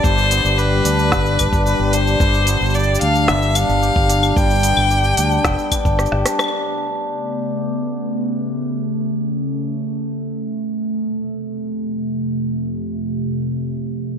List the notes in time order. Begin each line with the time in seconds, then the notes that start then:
Already playing: G3 A3 B3 D4 F4 G4 D5
0.04 G1 G2 C5, kick, shaker
0.18 shaker
0.31 B3, open hi-hat, shaker
0.45 G1, shaker
0.58 G4 B4, shaker
0.85 D2 D4, open hi-hat, shaker
0.99 shaker
1.12 G1, kick, snare, shaker
1.26 shaker
1.39 D4, kick, open hi-hat, claves, shaker
1.53 G1, kick, shaker
1.66 G4 B4, shaker
1.79 G1
1.93 D4 C5, open hi-hat, shaker
2.07 shaker
2.20 G1 G2, kick, shaker
2.34 shaker
2.47 B3, open hi-hat, shaker
2.61 G1, shaker
2.66 shaker
2.70 shaker
2.74 G4 D5, shaker
2.79 shaker
2.83 shaker
2.95 shaker
3.01 D2 D4 F5, open hi-hat
3.15 shaker
3.28 G1 B3 E5, snare, shaker
3.42 shaker
3.55 D4 F5, open hi-hat, claves, shaker
3.69 G1, shaker
3.82 G4, shaker
3.96 G1, kick
4.09 D4, open hi-hat, shaker
4.23 claves, shaker
4.36 G1 G2 G5, kick, shaker
4.51 shaker
4.55 shaker
4.59 open hi-hat, shaker
4.64 B3, shaker
4.77 G1, claves
4.91 G4, shaker
5.04 shaker
5.17 D2 D4, open hi-hat, shaker
5.31 shaker
5.44 F1 B3, kick, snare, shaker
5.59 shaker
5.72 D4, kick, open hi-hat, claves, shaker
5.85 G1, kick, shaker
5.99 G4, cross-stick, shaker
6.06 shaker
6.12 G1, cross-stick
6.26 D4, cross-stick, open hi-hat, shaker
6.39 cross-stick, claves, shaker
6.44 claves
6.48 claves
6.52 C#3 A3 B3
6.57 claves
6.62 claves
8.69 C#4
10.85 F2 C3